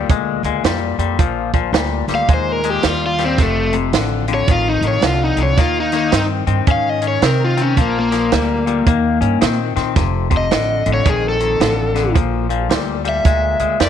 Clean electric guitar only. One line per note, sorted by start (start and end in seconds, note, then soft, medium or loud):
0.10 0.41 A#2 medium
0.10 0.42 G#3 loud
0.45 0.63 A#2 medium
0.45 0.63 G#3 medium
0.64 0.96 A#2 medium
0.64 0.96 G3 loud
0.99 1.17 A#2 medium
0.99 1.18 G3 medium
1.19 1.51 A#2 medium
1.19 1.51 F3 loud
1.54 1.72 A#2 medium
1.54 1.72 F3 medium
1.73 2.05 A#2 medium
1.73 2.05 G3 medium
2.09 2.27 A#2 medium
2.09 2.27 G3 medium
2.29 2.60 A#2 medium
2.29 2.61 G#3 medium
2.64 2.82 A#2 medium
2.64 2.83 G#3 medium
2.84 3.15 A#2 medium
2.84 3.16 G3 medium
3.19 3.37 A#2 medium
3.19 3.37 G3 medium
3.39 3.71 F2 medium
3.39 3.71 C3 medium
3.73 3.91 F2 medium
3.73 3.92 C3 medium
3.93 4.25 F2 medium
3.93 4.25 D3 medium
4.28 4.47 F2 medium
4.28 4.47 D3 medium
4.48 4.80 F2 medium
4.48 4.80 D#3 medium
4.83 5.02 F2 medium
4.83 5.02 D#3 medium
5.03 5.35 F2 medium
5.03 5.35 D3 medium
5.38 5.56 F2 medium
5.38 5.56 D3 medium
5.58 5.89 D#3 medium
5.58 5.90 A#3 loud
5.93 6.11 D#3 medium
5.93 6.11 A#3 medium
6.12 6.44 D#3 medium
6.12 6.44 C4 medium
6.47 6.66 D#3 medium
6.47 6.66 C4 medium
6.67 6.99 D#3 medium
6.67 6.99 C#4 loud
7.02 7.20 D#3 medium
7.02 7.21 C#4 medium
7.22 7.54 D#3 medium
7.22 7.54 C4 medium
7.57 7.75 D#3 medium
7.57 7.75 C4 medium
7.77 8.09 A#2 medium
7.77 8.09 F3 loud
8.12 8.30 A#2 medium
8.12 8.30 F3 medium
8.32 8.63 A#2 medium
8.32 8.64 G3 medium
8.66 8.85 A#2 medium
8.66 8.85 G3 medium
8.86 9.18 D#3 medium
8.86 9.18 A#3 loud
9.21 9.39 D#3 medium
9.21 9.40 C#4 medium
9.41 9.73 D#3 medium
9.41 9.73 C4 medium
9.76 9.94 D#3 medium
9.76 9.95 C4 medium
9.96 10.28 F2 loud
9.96 10.28 C3 medium
10.30 10.49 F2 medium
10.30 10.49 C3 loud
10.51 10.82 F2 medium
10.51 10.83 D3 medium
10.86 11.04 F2 medium
10.86 11.04 D3 medium
11.05 11.37 F2 medium
11.05 11.37 D#3 loud
11.40 11.58 F2 medium
11.40 11.59 D#3 medium
11.60 11.92 F2 medium
11.60 11.92 D3 medium
11.95 12.13 F2 medium
11.95 12.14 D3 medium
12.14 12.46 A#2 medium
12.14 12.47 F3 medium
12.49 12.68 A#2 medium
12.49 12.69 F3 medium
12.70 13.01 A#2 medium
12.70 13.02 G3 medium
13.05 13.23 A#2 medium
13.05 13.23 G3 medium
13.25 13.57 A#2 medium
13.25 13.57 G#3 medium
13.60 13.78 A#2 medium
13.60 13.78 G#3 medium
13.80 13.89 A#2 medium
13.80 13.89 G3 medium